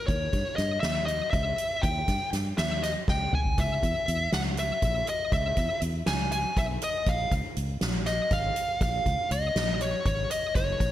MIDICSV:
0, 0, Header, 1, 4, 480
1, 0, Start_track
1, 0, Tempo, 498339
1, 81, Time_signature, 7, 3, 24, 8
1, 10515, End_track
2, 0, Start_track
2, 0, Title_t, "Lead electric guitar"
2, 0, Program_c, 0, 29
2, 62, Note_on_c, 0, 73, 85
2, 536, Note_off_c, 0, 73, 0
2, 540, Note_on_c, 0, 75, 87
2, 768, Note_off_c, 0, 75, 0
2, 772, Note_on_c, 0, 76, 89
2, 1010, Note_off_c, 0, 76, 0
2, 1023, Note_on_c, 0, 75, 86
2, 1253, Note_off_c, 0, 75, 0
2, 1257, Note_on_c, 0, 76, 94
2, 1750, Note_on_c, 0, 79, 88
2, 1766, Note_off_c, 0, 76, 0
2, 2204, Note_off_c, 0, 79, 0
2, 2489, Note_on_c, 0, 76, 84
2, 2726, Note_off_c, 0, 76, 0
2, 2730, Note_on_c, 0, 75, 72
2, 2794, Note_off_c, 0, 75, 0
2, 2983, Note_on_c, 0, 79, 102
2, 3221, Note_off_c, 0, 79, 0
2, 3225, Note_on_c, 0, 80, 101
2, 3463, Note_off_c, 0, 80, 0
2, 3463, Note_on_c, 0, 76, 91
2, 4137, Note_off_c, 0, 76, 0
2, 4178, Note_on_c, 0, 78, 82
2, 4241, Note_off_c, 0, 78, 0
2, 4422, Note_on_c, 0, 76, 77
2, 4899, Note_off_c, 0, 76, 0
2, 4903, Note_on_c, 0, 75, 78
2, 5131, Note_off_c, 0, 75, 0
2, 5135, Note_on_c, 0, 76, 74
2, 5578, Note_off_c, 0, 76, 0
2, 5848, Note_on_c, 0, 80, 92
2, 6078, Note_off_c, 0, 80, 0
2, 6090, Note_on_c, 0, 80, 96
2, 6336, Note_off_c, 0, 80, 0
2, 6337, Note_on_c, 0, 76, 93
2, 6400, Note_off_c, 0, 76, 0
2, 6586, Note_on_c, 0, 75, 84
2, 6823, Note_off_c, 0, 75, 0
2, 6827, Note_on_c, 0, 77, 84
2, 7041, Note_off_c, 0, 77, 0
2, 7769, Note_on_c, 0, 75, 89
2, 8014, Note_off_c, 0, 75, 0
2, 8019, Note_on_c, 0, 77, 105
2, 8489, Note_off_c, 0, 77, 0
2, 8501, Note_on_c, 0, 77, 96
2, 8939, Note_off_c, 0, 77, 0
2, 8977, Note_on_c, 0, 75, 85
2, 9458, Note_off_c, 0, 75, 0
2, 9462, Note_on_c, 0, 73, 77
2, 9682, Note_off_c, 0, 73, 0
2, 9694, Note_on_c, 0, 73, 83
2, 9911, Note_off_c, 0, 73, 0
2, 9932, Note_on_c, 0, 75, 89
2, 10164, Note_off_c, 0, 75, 0
2, 10168, Note_on_c, 0, 73, 80
2, 10515, Note_off_c, 0, 73, 0
2, 10515, End_track
3, 0, Start_track
3, 0, Title_t, "Fingered electric bass"
3, 0, Program_c, 1, 33
3, 80, Note_on_c, 1, 39, 92
3, 262, Note_off_c, 1, 39, 0
3, 317, Note_on_c, 1, 43, 83
3, 409, Note_off_c, 1, 43, 0
3, 560, Note_on_c, 1, 43, 88
3, 742, Note_off_c, 1, 43, 0
3, 798, Note_on_c, 1, 39, 84
3, 1163, Note_off_c, 1, 39, 0
3, 1282, Note_on_c, 1, 37, 90
3, 1464, Note_off_c, 1, 37, 0
3, 1765, Note_on_c, 1, 39, 99
3, 1946, Note_off_c, 1, 39, 0
3, 2003, Note_on_c, 1, 43, 79
3, 2094, Note_off_c, 1, 43, 0
3, 2242, Note_on_c, 1, 43, 87
3, 2425, Note_off_c, 1, 43, 0
3, 2485, Note_on_c, 1, 39, 84
3, 2849, Note_off_c, 1, 39, 0
3, 2966, Note_on_c, 1, 37, 85
3, 3148, Note_off_c, 1, 37, 0
3, 3447, Note_on_c, 1, 37, 84
3, 3629, Note_off_c, 1, 37, 0
3, 3690, Note_on_c, 1, 40, 89
3, 3779, Note_off_c, 1, 40, 0
3, 3929, Note_on_c, 1, 40, 92
3, 4110, Note_off_c, 1, 40, 0
3, 4169, Note_on_c, 1, 37, 89
3, 4531, Note_off_c, 1, 37, 0
3, 4647, Note_on_c, 1, 34, 81
3, 4828, Note_off_c, 1, 34, 0
3, 5125, Note_on_c, 1, 37, 92
3, 5307, Note_off_c, 1, 37, 0
3, 5364, Note_on_c, 1, 40, 86
3, 5456, Note_off_c, 1, 40, 0
3, 5602, Note_on_c, 1, 40, 94
3, 5786, Note_off_c, 1, 40, 0
3, 5842, Note_on_c, 1, 37, 77
3, 6206, Note_off_c, 1, 37, 0
3, 6324, Note_on_c, 1, 35, 87
3, 6506, Note_off_c, 1, 35, 0
3, 6805, Note_on_c, 1, 34, 93
3, 6986, Note_off_c, 1, 34, 0
3, 7045, Note_on_c, 1, 37, 89
3, 7136, Note_off_c, 1, 37, 0
3, 7289, Note_on_c, 1, 37, 83
3, 7469, Note_off_c, 1, 37, 0
3, 7525, Note_on_c, 1, 34, 90
3, 7888, Note_off_c, 1, 34, 0
3, 8006, Note_on_c, 1, 32, 84
3, 8187, Note_off_c, 1, 32, 0
3, 8484, Note_on_c, 1, 34, 89
3, 8665, Note_off_c, 1, 34, 0
3, 8726, Note_on_c, 1, 37, 87
3, 8816, Note_off_c, 1, 37, 0
3, 8965, Note_on_c, 1, 37, 87
3, 9145, Note_off_c, 1, 37, 0
3, 9203, Note_on_c, 1, 34, 82
3, 9565, Note_off_c, 1, 34, 0
3, 9686, Note_on_c, 1, 32, 77
3, 9866, Note_off_c, 1, 32, 0
3, 10164, Note_on_c, 1, 30, 84
3, 10344, Note_off_c, 1, 30, 0
3, 10404, Note_on_c, 1, 34, 89
3, 10494, Note_off_c, 1, 34, 0
3, 10515, End_track
4, 0, Start_track
4, 0, Title_t, "Drums"
4, 79, Note_on_c, 9, 42, 71
4, 80, Note_on_c, 9, 36, 93
4, 175, Note_off_c, 9, 42, 0
4, 176, Note_off_c, 9, 36, 0
4, 317, Note_on_c, 9, 42, 57
4, 319, Note_on_c, 9, 36, 77
4, 413, Note_off_c, 9, 42, 0
4, 415, Note_off_c, 9, 36, 0
4, 559, Note_on_c, 9, 38, 34
4, 559, Note_on_c, 9, 42, 58
4, 655, Note_off_c, 9, 38, 0
4, 655, Note_off_c, 9, 42, 0
4, 798, Note_on_c, 9, 38, 91
4, 798, Note_on_c, 9, 42, 82
4, 894, Note_off_c, 9, 38, 0
4, 894, Note_off_c, 9, 42, 0
4, 1042, Note_on_c, 9, 42, 54
4, 1138, Note_off_c, 9, 42, 0
4, 1280, Note_on_c, 9, 42, 76
4, 1282, Note_on_c, 9, 36, 89
4, 1377, Note_off_c, 9, 42, 0
4, 1378, Note_off_c, 9, 36, 0
4, 1523, Note_on_c, 9, 42, 65
4, 1619, Note_off_c, 9, 42, 0
4, 1764, Note_on_c, 9, 36, 87
4, 1764, Note_on_c, 9, 42, 77
4, 1860, Note_off_c, 9, 36, 0
4, 1860, Note_off_c, 9, 42, 0
4, 2001, Note_on_c, 9, 38, 31
4, 2001, Note_on_c, 9, 42, 61
4, 2003, Note_on_c, 9, 36, 68
4, 2098, Note_off_c, 9, 38, 0
4, 2098, Note_off_c, 9, 42, 0
4, 2100, Note_off_c, 9, 36, 0
4, 2243, Note_on_c, 9, 38, 32
4, 2243, Note_on_c, 9, 42, 66
4, 2340, Note_off_c, 9, 38, 0
4, 2340, Note_off_c, 9, 42, 0
4, 2482, Note_on_c, 9, 38, 100
4, 2482, Note_on_c, 9, 42, 74
4, 2579, Note_off_c, 9, 38, 0
4, 2579, Note_off_c, 9, 42, 0
4, 2729, Note_on_c, 9, 38, 32
4, 2729, Note_on_c, 9, 42, 64
4, 2826, Note_off_c, 9, 38, 0
4, 2826, Note_off_c, 9, 42, 0
4, 2965, Note_on_c, 9, 38, 51
4, 2967, Note_on_c, 9, 36, 100
4, 3061, Note_off_c, 9, 38, 0
4, 3063, Note_off_c, 9, 36, 0
4, 3205, Note_on_c, 9, 45, 89
4, 3301, Note_off_c, 9, 45, 0
4, 3325, Note_on_c, 9, 43, 81
4, 3422, Note_off_c, 9, 43, 0
4, 3446, Note_on_c, 9, 42, 67
4, 3448, Note_on_c, 9, 36, 93
4, 3542, Note_off_c, 9, 42, 0
4, 3544, Note_off_c, 9, 36, 0
4, 3688, Note_on_c, 9, 36, 67
4, 3690, Note_on_c, 9, 42, 56
4, 3784, Note_off_c, 9, 36, 0
4, 3786, Note_off_c, 9, 42, 0
4, 3930, Note_on_c, 9, 42, 59
4, 4026, Note_off_c, 9, 42, 0
4, 4165, Note_on_c, 9, 38, 100
4, 4165, Note_on_c, 9, 42, 75
4, 4261, Note_off_c, 9, 38, 0
4, 4261, Note_off_c, 9, 42, 0
4, 4404, Note_on_c, 9, 42, 53
4, 4500, Note_off_c, 9, 42, 0
4, 4643, Note_on_c, 9, 42, 69
4, 4646, Note_on_c, 9, 36, 87
4, 4740, Note_off_c, 9, 42, 0
4, 4742, Note_off_c, 9, 36, 0
4, 4884, Note_on_c, 9, 42, 64
4, 4980, Note_off_c, 9, 42, 0
4, 5124, Note_on_c, 9, 42, 73
4, 5125, Note_on_c, 9, 36, 101
4, 5220, Note_off_c, 9, 42, 0
4, 5221, Note_off_c, 9, 36, 0
4, 5362, Note_on_c, 9, 42, 59
4, 5364, Note_on_c, 9, 36, 73
4, 5458, Note_off_c, 9, 42, 0
4, 5461, Note_off_c, 9, 36, 0
4, 5601, Note_on_c, 9, 42, 61
4, 5698, Note_off_c, 9, 42, 0
4, 5840, Note_on_c, 9, 38, 104
4, 5840, Note_on_c, 9, 42, 80
4, 5936, Note_off_c, 9, 38, 0
4, 5936, Note_off_c, 9, 42, 0
4, 6084, Note_on_c, 9, 42, 61
4, 6180, Note_off_c, 9, 42, 0
4, 6325, Note_on_c, 9, 36, 86
4, 6325, Note_on_c, 9, 42, 80
4, 6421, Note_off_c, 9, 36, 0
4, 6421, Note_off_c, 9, 42, 0
4, 6564, Note_on_c, 9, 42, 66
4, 6661, Note_off_c, 9, 42, 0
4, 6802, Note_on_c, 9, 42, 75
4, 6806, Note_on_c, 9, 36, 91
4, 6899, Note_off_c, 9, 42, 0
4, 6902, Note_off_c, 9, 36, 0
4, 7045, Note_on_c, 9, 42, 63
4, 7046, Note_on_c, 9, 36, 73
4, 7142, Note_off_c, 9, 36, 0
4, 7142, Note_off_c, 9, 42, 0
4, 7287, Note_on_c, 9, 42, 59
4, 7383, Note_off_c, 9, 42, 0
4, 7523, Note_on_c, 9, 38, 103
4, 7523, Note_on_c, 9, 42, 84
4, 7619, Note_off_c, 9, 38, 0
4, 7619, Note_off_c, 9, 42, 0
4, 7764, Note_on_c, 9, 38, 35
4, 7764, Note_on_c, 9, 42, 55
4, 7860, Note_off_c, 9, 38, 0
4, 7860, Note_off_c, 9, 42, 0
4, 8001, Note_on_c, 9, 38, 30
4, 8001, Note_on_c, 9, 42, 74
4, 8005, Note_on_c, 9, 36, 99
4, 8097, Note_off_c, 9, 38, 0
4, 8097, Note_off_c, 9, 42, 0
4, 8101, Note_off_c, 9, 36, 0
4, 8244, Note_on_c, 9, 42, 57
4, 8340, Note_off_c, 9, 42, 0
4, 8484, Note_on_c, 9, 42, 67
4, 8486, Note_on_c, 9, 36, 95
4, 8581, Note_off_c, 9, 42, 0
4, 8582, Note_off_c, 9, 36, 0
4, 8726, Note_on_c, 9, 36, 76
4, 8727, Note_on_c, 9, 42, 57
4, 8823, Note_off_c, 9, 36, 0
4, 8823, Note_off_c, 9, 42, 0
4, 8967, Note_on_c, 9, 42, 64
4, 9063, Note_off_c, 9, 42, 0
4, 9206, Note_on_c, 9, 38, 103
4, 9206, Note_on_c, 9, 42, 78
4, 9302, Note_off_c, 9, 38, 0
4, 9302, Note_off_c, 9, 42, 0
4, 9445, Note_on_c, 9, 42, 62
4, 9541, Note_off_c, 9, 42, 0
4, 9684, Note_on_c, 9, 42, 72
4, 9686, Note_on_c, 9, 36, 94
4, 9781, Note_off_c, 9, 42, 0
4, 9782, Note_off_c, 9, 36, 0
4, 9927, Note_on_c, 9, 42, 66
4, 10023, Note_off_c, 9, 42, 0
4, 10163, Note_on_c, 9, 42, 79
4, 10164, Note_on_c, 9, 36, 95
4, 10260, Note_off_c, 9, 42, 0
4, 10261, Note_off_c, 9, 36, 0
4, 10405, Note_on_c, 9, 36, 80
4, 10406, Note_on_c, 9, 42, 56
4, 10501, Note_off_c, 9, 36, 0
4, 10503, Note_off_c, 9, 42, 0
4, 10515, End_track
0, 0, End_of_file